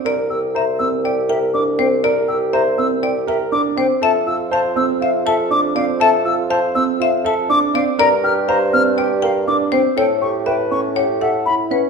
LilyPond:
<<
  \new Staff \with { instrumentName = "Flute" } { \time 4/4 \key f \major \tempo 4 = 121 r8 e'''8 bes''8 e'''8 g''8 e''8 d'''8 g''8 | r8 e'''8 bes''8 e'''8 g''8 e''8 d'''8 g''8 | a''8 e'''8 a''8 e'''8 f''8 e''8 d'''8 f''8 | a''8 e'''8 a''8 e'''8 f''8 e''8 d'''8 f''8 |
bes''8 f'''8 bes''8 f'''8 g''8 f''8 d'''8 g''8 | g''8 cis'''8 g''8 cis'''8 ges''8 e''8 b''8 ges''8 | }
  \new Staff \with { instrumentName = "Marimba" } { \time 4/4 \key f \major d''8 r8 e''8 r8 d''8 g''8 r8 c''8 | d''8 r8 e''8 r8 d''8 g''8 r8 c''8 | e''8 r8 f''8 r8 e''8 a''8 r8 d''8 | e''8 r8 f''8 r8 e''8 a''8 r8 d''8 |
d''8 r8 f''8 r8 d''8 g''8 r8 c''8 | cis''8 r8 e''8 r8 cis''8 ges''8 r8 b'8 | }
  \new Staff \with { instrumentName = "Grand piano" } { \time 4/4 \key f \major bes'8 g'8 c''8 c'8 g'8 bes'8 d'8 c'8 | bes'8 g'8 c''8 c'8 g'8 bes'8 d'8 c'8 | a'8 f'8 c''8 c'8 f'8 a'8 d'8 c'8 | a'8 f'8 c''8 c'8 f'8 a'8 d'8 c'8 |
bes'8 g'8 c''8 c'8 g'8 bes'8 d'8 c'8 | a'8 g'8 b'8 cis'8 g'8 a'8 e'8 cis'8 | }
  \new Staff \with { instrumentName = "Bassoon" } { \clef bass \time 4/4 \key f \major c,1~ | c,1 | f,1~ | f,1 |
g,1 | a,1 | }
>>